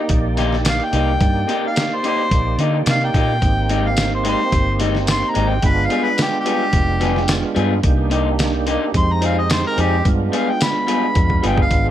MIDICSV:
0, 0, Header, 1, 6, 480
1, 0, Start_track
1, 0, Key_signature, -3, "minor"
1, 0, Tempo, 552995
1, 1049, Time_signature, 4, 2, 24, 8
1, 10335, End_track
2, 0, Start_track
2, 0, Title_t, "Harmonica"
2, 0, Program_c, 0, 22
2, 0, Note_on_c, 0, 63, 110
2, 306, Note_off_c, 0, 63, 0
2, 601, Note_on_c, 0, 77, 94
2, 730, Note_on_c, 0, 79, 110
2, 743, Note_off_c, 0, 77, 0
2, 1410, Note_off_c, 0, 79, 0
2, 1450, Note_on_c, 0, 77, 91
2, 1696, Note_on_c, 0, 72, 83
2, 1709, Note_off_c, 0, 77, 0
2, 1784, Note_off_c, 0, 72, 0
2, 1805, Note_on_c, 0, 72, 102
2, 2253, Note_off_c, 0, 72, 0
2, 2517, Note_on_c, 0, 77, 100
2, 2619, Note_off_c, 0, 77, 0
2, 2643, Note_on_c, 0, 79, 111
2, 3362, Note_on_c, 0, 77, 88
2, 3375, Note_off_c, 0, 79, 0
2, 3580, Note_off_c, 0, 77, 0
2, 3600, Note_on_c, 0, 72, 74
2, 3695, Note_off_c, 0, 72, 0
2, 3720, Note_on_c, 0, 72, 108
2, 4170, Note_off_c, 0, 72, 0
2, 4441, Note_on_c, 0, 84, 96
2, 4598, Note_on_c, 0, 82, 94
2, 4611, Note_off_c, 0, 84, 0
2, 4759, Note_on_c, 0, 79, 90
2, 4772, Note_off_c, 0, 82, 0
2, 4921, Note_on_c, 0, 71, 99
2, 4934, Note_off_c, 0, 79, 0
2, 5083, Note_on_c, 0, 77, 96
2, 5096, Note_off_c, 0, 71, 0
2, 5235, Note_on_c, 0, 71, 89
2, 5248, Note_off_c, 0, 77, 0
2, 5376, Note_off_c, 0, 71, 0
2, 5399, Note_on_c, 0, 67, 89
2, 5539, Note_off_c, 0, 67, 0
2, 5560, Note_on_c, 0, 67, 110
2, 6475, Note_off_c, 0, 67, 0
2, 7791, Note_on_c, 0, 84, 101
2, 7916, Note_on_c, 0, 82, 94
2, 7929, Note_off_c, 0, 84, 0
2, 8012, Note_off_c, 0, 82, 0
2, 8035, Note_on_c, 0, 77, 81
2, 8137, Note_off_c, 0, 77, 0
2, 8146, Note_on_c, 0, 75, 75
2, 8246, Note_off_c, 0, 75, 0
2, 8270, Note_on_c, 0, 72, 88
2, 8374, Note_off_c, 0, 72, 0
2, 8391, Note_on_c, 0, 70, 103
2, 8508, Note_on_c, 0, 67, 91
2, 8521, Note_off_c, 0, 70, 0
2, 8730, Note_off_c, 0, 67, 0
2, 8996, Note_on_c, 0, 77, 82
2, 9110, Note_on_c, 0, 79, 91
2, 9123, Note_off_c, 0, 77, 0
2, 9229, Note_on_c, 0, 83, 84
2, 9242, Note_off_c, 0, 79, 0
2, 9917, Note_off_c, 0, 83, 0
2, 9955, Note_on_c, 0, 79, 84
2, 10057, Note_off_c, 0, 79, 0
2, 10085, Note_on_c, 0, 77, 91
2, 10301, Note_off_c, 0, 77, 0
2, 10335, End_track
3, 0, Start_track
3, 0, Title_t, "Tonewheel organ"
3, 0, Program_c, 1, 16
3, 0, Note_on_c, 1, 58, 70
3, 0, Note_on_c, 1, 63, 59
3, 0, Note_on_c, 1, 67, 74
3, 0, Note_on_c, 1, 74, 57
3, 2925, Note_off_c, 1, 58, 0
3, 2933, Note_off_c, 1, 74, 0
3, 2936, Note_off_c, 1, 63, 0
3, 2940, Note_off_c, 1, 67, 0
3, 2951, Note_on_c, 1, 58, 69
3, 2966, Note_on_c, 1, 60, 61
3, 2974, Note_on_c, 1, 63, 60
3, 2987, Note_on_c, 1, 67, 73
3, 4844, Note_off_c, 1, 58, 0
3, 4851, Note_off_c, 1, 60, 0
3, 4855, Note_off_c, 1, 63, 0
3, 4862, Note_off_c, 1, 67, 0
3, 4878, Note_on_c, 1, 56, 68
3, 4887, Note_on_c, 1, 59, 61
3, 4901, Note_on_c, 1, 62, 63
3, 4909, Note_on_c, 1, 65, 76
3, 6767, Note_off_c, 1, 56, 0
3, 6772, Note_off_c, 1, 59, 0
3, 6779, Note_off_c, 1, 62, 0
3, 6783, Note_off_c, 1, 65, 0
3, 6792, Note_on_c, 1, 58, 82
3, 6805, Note_on_c, 1, 62, 72
3, 6814, Note_on_c, 1, 63, 69
3, 6828, Note_on_c, 1, 67, 89
3, 7740, Note_off_c, 1, 58, 0
3, 7746, Note_off_c, 1, 62, 0
3, 7751, Note_off_c, 1, 63, 0
3, 7757, Note_on_c, 1, 56, 64
3, 7758, Note_off_c, 1, 67, 0
3, 7767, Note_on_c, 1, 60, 60
3, 7774, Note_on_c, 1, 63, 62
3, 7783, Note_on_c, 1, 67, 74
3, 8702, Note_off_c, 1, 56, 0
3, 8707, Note_off_c, 1, 60, 0
3, 8711, Note_off_c, 1, 63, 0
3, 8715, Note_off_c, 1, 67, 0
3, 8715, Note_on_c, 1, 56, 70
3, 8725, Note_on_c, 1, 59, 62
3, 8734, Note_on_c, 1, 62, 63
3, 8745, Note_on_c, 1, 65, 72
3, 10335, Note_off_c, 1, 56, 0
3, 10335, Note_off_c, 1, 59, 0
3, 10335, Note_off_c, 1, 62, 0
3, 10335, Note_off_c, 1, 65, 0
3, 10335, End_track
4, 0, Start_track
4, 0, Title_t, "Clean electric guitar"
4, 0, Program_c, 2, 27
4, 322, Note_on_c, 2, 48, 87
4, 330, Note_on_c, 2, 58, 91
4, 331, Note_on_c, 2, 63, 87
4, 338, Note_on_c, 2, 67, 103
4, 473, Note_off_c, 2, 48, 0
4, 477, Note_off_c, 2, 58, 0
4, 477, Note_off_c, 2, 63, 0
4, 481, Note_off_c, 2, 67, 0
4, 804, Note_on_c, 2, 48, 81
4, 812, Note_on_c, 2, 58, 81
4, 818, Note_on_c, 2, 63, 84
4, 821, Note_on_c, 2, 67, 79
4, 954, Note_off_c, 2, 48, 0
4, 958, Note_off_c, 2, 58, 0
4, 961, Note_off_c, 2, 63, 0
4, 962, Note_off_c, 2, 67, 0
4, 1282, Note_on_c, 2, 48, 89
4, 1287, Note_on_c, 2, 58, 72
4, 1296, Note_on_c, 2, 63, 80
4, 1299, Note_on_c, 2, 67, 90
4, 1433, Note_off_c, 2, 48, 0
4, 1435, Note_off_c, 2, 58, 0
4, 1440, Note_off_c, 2, 63, 0
4, 1441, Note_off_c, 2, 67, 0
4, 1765, Note_on_c, 2, 48, 68
4, 1774, Note_on_c, 2, 58, 80
4, 1779, Note_on_c, 2, 63, 80
4, 1784, Note_on_c, 2, 67, 87
4, 1914, Note_off_c, 2, 48, 0
4, 1919, Note_off_c, 2, 58, 0
4, 1921, Note_off_c, 2, 63, 0
4, 1924, Note_off_c, 2, 67, 0
4, 2249, Note_on_c, 2, 48, 80
4, 2253, Note_on_c, 2, 58, 82
4, 2260, Note_on_c, 2, 63, 90
4, 2262, Note_on_c, 2, 67, 82
4, 2396, Note_off_c, 2, 48, 0
4, 2398, Note_off_c, 2, 58, 0
4, 2401, Note_off_c, 2, 63, 0
4, 2402, Note_off_c, 2, 67, 0
4, 2727, Note_on_c, 2, 48, 74
4, 2735, Note_on_c, 2, 58, 78
4, 2738, Note_on_c, 2, 63, 74
4, 2745, Note_on_c, 2, 67, 77
4, 2875, Note_off_c, 2, 48, 0
4, 2879, Note_off_c, 2, 58, 0
4, 2880, Note_off_c, 2, 63, 0
4, 2883, Note_off_c, 2, 67, 0
4, 3207, Note_on_c, 2, 56, 76
4, 3213, Note_on_c, 2, 60, 81
4, 3216, Note_on_c, 2, 63, 90
4, 3225, Note_on_c, 2, 67, 80
4, 3354, Note_off_c, 2, 56, 0
4, 3357, Note_off_c, 2, 60, 0
4, 3359, Note_off_c, 2, 63, 0
4, 3363, Note_off_c, 2, 67, 0
4, 3679, Note_on_c, 2, 56, 69
4, 3689, Note_on_c, 2, 60, 75
4, 3694, Note_on_c, 2, 63, 78
4, 3699, Note_on_c, 2, 67, 72
4, 3830, Note_off_c, 2, 56, 0
4, 3835, Note_off_c, 2, 60, 0
4, 3838, Note_off_c, 2, 63, 0
4, 3840, Note_off_c, 2, 67, 0
4, 4161, Note_on_c, 2, 56, 78
4, 4167, Note_on_c, 2, 60, 77
4, 4171, Note_on_c, 2, 63, 86
4, 4175, Note_on_c, 2, 67, 85
4, 4311, Note_off_c, 2, 56, 0
4, 4314, Note_off_c, 2, 60, 0
4, 4316, Note_off_c, 2, 63, 0
4, 4318, Note_off_c, 2, 67, 0
4, 4636, Note_on_c, 2, 56, 69
4, 4644, Note_on_c, 2, 60, 80
4, 4649, Note_on_c, 2, 63, 77
4, 4653, Note_on_c, 2, 67, 81
4, 4789, Note_off_c, 2, 56, 0
4, 4792, Note_off_c, 2, 60, 0
4, 4795, Note_off_c, 2, 63, 0
4, 4797, Note_off_c, 2, 67, 0
4, 5120, Note_on_c, 2, 55, 73
4, 5126, Note_on_c, 2, 59, 85
4, 5127, Note_on_c, 2, 65, 86
4, 5137, Note_on_c, 2, 68, 88
4, 5270, Note_off_c, 2, 55, 0
4, 5273, Note_off_c, 2, 59, 0
4, 5274, Note_off_c, 2, 65, 0
4, 5279, Note_off_c, 2, 68, 0
4, 5597, Note_on_c, 2, 55, 76
4, 5606, Note_on_c, 2, 59, 73
4, 5607, Note_on_c, 2, 65, 83
4, 5613, Note_on_c, 2, 68, 85
4, 5749, Note_off_c, 2, 55, 0
4, 5753, Note_off_c, 2, 59, 0
4, 5754, Note_off_c, 2, 65, 0
4, 5757, Note_off_c, 2, 68, 0
4, 6080, Note_on_c, 2, 55, 75
4, 6088, Note_on_c, 2, 59, 87
4, 6089, Note_on_c, 2, 65, 76
4, 6097, Note_on_c, 2, 68, 88
4, 6230, Note_off_c, 2, 55, 0
4, 6234, Note_off_c, 2, 59, 0
4, 6235, Note_off_c, 2, 65, 0
4, 6239, Note_off_c, 2, 68, 0
4, 6552, Note_on_c, 2, 55, 99
4, 6558, Note_on_c, 2, 59, 97
4, 6565, Note_on_c, 2, 65, 89
4, 6568, Note_on_c, 2, 68, 95
4, 6706, Note_off_c, 2, 55, 0
4, 6709, Note_off_c, 2, 59, 0
4, 6712, Note_off_c, 2, 65, 0
4, 6714, Note_off_c, 2, 68, 0
4, 7031, Note_on_c, 2, 48, 92
4, 7038, Note_on_c, 2, 58, 85
4, 7042, Note_on_c, 2, 63, 96
4, 7049, Note_on_c, 2, 67, 88
4, 7185, Note_off_c, 2, 48, 0
4, 7189, Note_off_c, 2, 58, 0
4, 7191, Note_off_c, 2, 63, 0
4, 7194, Note_off_c, 2, 67, 0
4, 7521, Note_on_c, 2, 48, 83
4, 7528, Note_on_c, 2, 58, 85
4, 7534, Note_on_c, 2, 63, 88
4, 7535, Note_on_c, 2, 67, 93
4, 7670, Note_off_c, 2, 48, 0
4, 7674, Note_off_c, 2, 58, 0
4, 7677, Note_off_c, 2, 63, 0
4, 7678, Note_off_c, 2, 67, 0
4, 7996, Note_on_c, 2, 53, 76
4, 8001, Note_on_c, 2, 60, 87
4, 8009, Note_on_c, 2, 63, 82
4, 8017, Note_on_c, 2, 68, 90
4, 8148, Note_off_c, 2, 53, 0
4, 8151, Note_off_c, 2, 60, 0
4, 8155, Note_off_c, 2, 63, 0
4, 8159, Note_off_c, 2, 68, 0
4, 8481, Note_on_c, 2, 53, 74
4, 8489, Note_on_c, 2, 60, 74
4, 8493, Note_on_c, 2, 63, 82
4, 8495, Note_on_c, 2, 68, 84
4, 8631, Note_off_c, 2, 53, 0
4, 8635, Note_off_c, 2, 60, 0
4, 8636, Note_off_c, 2, 63, 0
4, 8638, Note_off_c, 2, 68, 0
4, 8959, Note_on_c, 2, 55, 86
4, 8964, Note_on_c, 2, 59, 77
4, 8969, Note_on_c, 2, 65, 89
4, 8976, Note_on_c, 2, 68, 91
4, 9109, Note_off_c, 2, 55, 0
4, 9112, Note_off_c, 2, 59, 0
4, 9114, Note_off_c, 2, 65, 0
4, 9118, Note_off_c, 2, 68, 0
4, 9434, Note_on_c, 2, 55, 77
4, 9440, Note_on_c, 2, 59, 75
4, 9445, Note_on_c, 2, 65, 78
4, 9449, Note_on_c, 2, 68, 89
4, 9587, Note_off_c, 2, 55, 0
4, 9590, Note_off_c, 2, 59, 0
4, 9592, Note_off_c, 2, 65, 0
4, 9595, Note_off_c, 2, 68, 0
4, 9918, Note_on_c, 2, 55, 84
4, 9925, Note_on_c, 2, 59, 80
4, 9930, Note_on_c, 2, 65, 79
4, 9932, Note_on_c, 2, 68, 86
4, 10069, Note_off_c, 2, 55, 0
4, 10073, Note_off_c, 2, 59, 0
4, 10075, Note_off_c, 2, 65, 0
4, 10076, Note_off_c, 2, 68, 0
4, 10335, End_track
5, 0, Start_track
5, 0, Title_t, "Fingered electric bass"
5, 0, Program_c, 3, 33
5, 86, Note_on_c, 3, 34, 93
5, 686, Note_off_c, 3, 34, 0
5, 808, Note_on_c, 3, 36, 91
5, 1008, Note_off_c, 3, 36, 0
5, 1049, Note_on_c, 3, 43, 104
5, 1248, Note_off_c, 3, 43, 0
5, 2007, Note_on_c, 3, 34, 87
5, 2207, Note_off_c, 3, 34, 0
5, 2243, Note_on_c, 3, 50, 88
5, 2461, Note_off_c, 3, 50, 0
5, 2487, Note_on_c, 3, 48, 83
5, 2703, Note_off_c, 3, 48, 0
5, 2726, Note_on_c, 3, 46, 86
5, 2943, Note_off_c, 3, 46, 0
5, 2969, Note_on_c, 3, 32, 88
5, 3766, Note_off_c, 3, 32, 0
5, 3926, Note_on_c, 3, 31, 83
5, 4525, Note_off_c, 3, 31, 0
5, 4654, Note_on_c, 3, 32, 84
5, 4851, Note_off_c, 3, 32, 0
5, 4887, Note_on_c, 3, 31, 85
5, 5087, Note_off_c, 3, 31, 0
5, 5843, Note_on_c, 3, 29, 88
5, 6443, Note_off_c, 3, 29, 0
5, 6566, Note_on_c, 3, 43, 99
5, 6765, Note_off_c, 3, 43, 0
5, 6805, Note_on_c, 3, 36, 99
5, 7603, Note_off_c, 3, 36, 0
5, 7760, Note_on_c, 3, 41, 103
5, 8361, Note_off_c, 3, 41, 0
5, 8488, Note_on_c, 3, 41, 88
5, 8687, Note_off_c, 3, 41, 0
5, 8727, Note_on_c, 3, 43, 100
5, 8926, Note_off_c, 3, 43, 0
5, 9686, Note_on_c, 3, 41, 83
5, 9886, Note_off_c, 3, 41, 0
5, 9937, Note_on_c, 3, 31, 88
5, 10148, Note_off_c, 3, 31, 0
5, 10164, Note_on_c, 3, 32, 92
5, 10335, Note_off_c, 3, 32, 0
5, 10335, End_track
6, 0, Start_track
6, 0, Title_t, "Drums"
6, 78, Note_on_c, 9, 42, 82
6, 84, Note_on_c, 9, 36, 84
6, 165, Note_off_c, 9, 42, 0
6, 171, Note_off_c, 9, 36, 0
6, 323, Note_on_c, 9, 42, 60
6, 333, Note_on_c, 9, 38, 36
6, 410, Note_off_c, 9, 42, 0
6, 420, Note_off_c, 9, 38, 0
6, 455, Note_on_c, 9, 38, 35
6, 542, Note_off_c, 9, 38, 0
6, 563, Note_on_c, 9, 42, 83
6, 563, Note_on_c, 9, 54, 113
6, 573, Note_on_c, 9, 38, 107
6, 650, Note_off_c, 9, 42, 0
6, 650, Note_off_c, 9, 54, 0
6, 660, Note_off_c, 9, 38, 0
6, 806, Note_on_c, 9, 42, 57
6, 893, Note_off_c, 9, 42, 0
6, 1046, Note_on_c, 9, 42, 82
6, 1048, Note_on_c, 9, 36, 108
6, 1133, Note_off_c, 9, 42, 0
6, 1135, Note_off_c, 9, 36, 0
6, 1292, Note_on_c, 9, 42, 53
6, 1379, Note_off_c, 9, 42, 0
6, 1530, Note_on_c, 9, 42, 68
6, 1530, Note_on_c, 9, 54, 85
6, 1539, Note_on_c, 9, 38, 102
6, 1617, Note_off_c, 9, 42, 0
6, 1617, Note_off_c, 9, 54, 0
6, 1626, Note_off_c, 9, 38, 0
6, 1771, Note_on_c, 9, 42, 63
6, 1857, Note_off_c, 9, 42, 0
6, 2008, Note_on_c, 9, 36, 88
6, 2009, Note_on_c, 9, 42, 79
6, 2095, Note_off_c, 9, 36, 0
6, 2096, Note_off_c, 9, 42, 0
6, 2245, Note_on_c, 9, 42, 59
6, 2332, Note_off_c, 9, 42, 0
6, 2483, Note_on_c, 9, 42, 74
6, 2483, Note_on_c, 9, 54, 105
6, 2493, Note_on_c, 9, 38, 104
6, 2570, Note_off_c, 9, 42, 0
6, 2570, Note_off_c, 9, 54, 0
6, 2580, Note_off_c, 9, 38, 0
6, 2728, Note_on_c, 9, 36, 75
6, 2731, Note_on_c, 9, 42, 60
6, 2815, Note_off_c, 9, 36, 0
6, 2818, Note_off_c, 9, 42, 0
6, 2968, Note_on_c, 9, 36, 100
6, 2969, Note_on_c, 9, 42, 73
6, 3055, Note_off_c, 9, 36, 0
6, 3056, Note_off_c, 9, 42, 0
6, 3207, Note_on_c, 9, 42, 63
6, 3294, Note_off_c, 9, 42, 0
6, 3442, Note_on_c, 9, 42, 77
6, 3442, Note_on_c, 9, 54, 98
6, 3452, Note_on_c, 9, 38, 100
6, 3529, Note_off_c, 9, 42, 0
6, 3529, Note_off_c, 9, 54, 0
6, 3539, Note_off_c, 9, 38, 0
6, 3687, Note_on_c, 9, 42, 70
6, 3774, Note_off_c, 9, 42, 0
6, 3926, Note_on_c, 9, 42, 88
6, 3927, Note_on_c, 9, 36, 85
6, 4013, Note_off_c, 9, 42, 0
6, 4014, Note_off_c, 9, 36, 0
6, 4163, Note_on_c, 9, 42, 69
6, 4172, Note_on_c, 9, 38, 34
6, 4250, Note_off_c, 9, 42, 0
6, 4259, Note_off_c, 9, 38, 0
6, 4295, Note_on_c, 9, 38, 34
6, 4381, Note_off_c, 9, 38, 0
6, 4403, Note_on_c, 9, 42, 86
6, 4403, Note_on_c, 9, 54, 105
6, 4413, Note_on_c, 9, 38, 103
6, 4490, Note_off_c, 9, 42, 0
6, 4490, Note_off_c, 9, 54, 0
6, 4499, Note_off_c, 9, 38, 0
6, 4645, Note_on_c, 9, 42, 52
6, 4731, Note_off_c, 9, 42, 0
6, 4882, Note_on_c, 9, 42, 81
6, 4886, Note_on_c, 9, 36, 96
6, 4969, Note_off_c, 9, 42, 0
6, 4973, Note_off_c, 9, 36, 0
6, 5123, Note_on_c, 9, 42, 59
6, 5210, Note_off_c, 9, 42, 0
6, 5363, Note_on_c, 9, 42, 67
6, 5363, Note_on_c, 9, 54, 93
6, 5373, Note_on_c, 9, 38, 102
6, 5450, Note_off_c, 9, 42, 0
6, 5450, Note_off_c, 9, 54, 0
6, 5459, Note_off_c, 9, 38, 0
6, 5606, Note_on_c, 9, 42, 65
6, 5693, Note_off_c, 9, 42, 0
6, 5840, Note_on_c, 9, 42, 78
6, 5843, Note_on_c, 9, 36, 85
6, 5927, Note_off_c, 9, 42, 0
6, 5930, Note_off_c, 9, 36, 0
6, 6083, Note_on_c, 9, 42, 63
6, 6093, Note_on_c, 9, 38, 35
6, 6170, Note_off_c, 9, 42, 0
6, 6180, Note_off_c, 9, 38, 0
6, 6217, Note_on_c, 9, 38, 30
6, 6304, Note_off_c, 9, 38, 0
6, 6318, Note_on_c, 9, 42, 84
6, 6318, Note_on_c, 9, 54, 109
6, 6328, Note_on_c, 9, 38, 107
6, 6405, Note_off_c, 9, 42, 0
6, 6405, Note_off_c, 9, 54, 0
6, 6415, Note_off_c, 9, 38, 0
6, 6563, Note_on_c, 9, 42, 54
6, 6649, Note_off_c, 9, 42, 0
6, 6801, Note_on_c, 9, 42, 79
6, 6802, Note_on_c, 9, 36, 104
6, 6887, Note_off_c, 9, 42, 0
6, 6889, Note_off_c, 9, 36, 0
6, 7040, Note_on_c, 9, 42, 59
6, 7127, Note_off_c, 9, 42, 0
6, 7282, Note_on_c, 9, 42, 81
6, 7282, Note_on_c, 9, 54, 90
6, 7292, Note_on_c, 9, 38, 97
6, 7369, Note_off_c, 9, 42, 0
6, 7369, Note_off_c, 9, 54, 0
6, 7378, Note_off_c, 9, 38, 0
6, 7523, Note_on_c, 9, 42, 66
6, 7610, Note_off_c, 9, 42, 0
6, 7763, Note_on_c, 9, 36, 78
6, 7763, Note_on_c, 9, 42, 89
6, 7849, Note_off_c, 9, 42, 0
6, 7850, Note_off_c, 9, 36, 0
6, 8002, Note_on_c, 9, 42, 69
6, 8089, Note_off_c, 9, 42, 0
6, 8243, Note_on_c, 9, 42, 85
6, 8243, Note_on_c, 9, 54, 105
6, 8253, Note_on_c, 9, 38, 112
6, 8330, Note_off_c, 9, 42, 0
6, 8330, Note_off_c, 9, 54, 0
6, 8340, Note_off_c, 9, 38, 0
6, 8487, Note_on_c, 9, 42, 55
6, 8574, Note_off_c, 9, 42, 0
6, 8726, Note_on_c, 9, 36, 98
6, 8726, Note_on_c, 9, 42, 80
6, 8813, Note_off_c, 9, 36, 0
6, 8813, Note_off_c, 9, 42, 0
6, 8968, Note_on_c, 9, 42, 62
6, 9055, Note_off_c, 9, 42, 0
6, 9206, Note_on_c, 9, 42, 83
6, 9206, Note_on_c, 9, 54, 104
6, 9216, Note_on_c, 9, 38, 106
6, 9293, Note_off_c, 9, 42, 0
6, 9293, Note_off_c, 9, 54, 0
6, 9303, Note_off_c, 9, 38, 0
6, 9446, Note_on_c, 9, 42, 65
6, 9532, Note_off_c, 9, 42, 0
6, 9681, Note_on_c, 9, 42, 83
6, 9685, Note_on_c, 9, 36, 92
6, 9768, Note_off_c, 9, 42, 0
6, 9771, Note_off_c, 9, 36, 0
6, 9807, Note_on_c, 9, 36, 61
6, 9894, Note_off_c, 9, 36, 0
6, 9926, Note_on_c, 9, 42, 67
6, 10013, Note_off_c, 9, 42, 0
6, 10047, Note_on_c, 9, 36, 76
6, 10134, Note_off_c, 9, 36, 0
6, 10161, Note_on_c, 9, 42, 82
6, 10164, Note_on_c, 9, 36, 83
6, 10248, Note_off_c, 9, 42, 0
6, 10251, Note_off_c, 9, 36, 0
6, 10335, End_track
0, 0, End_of_file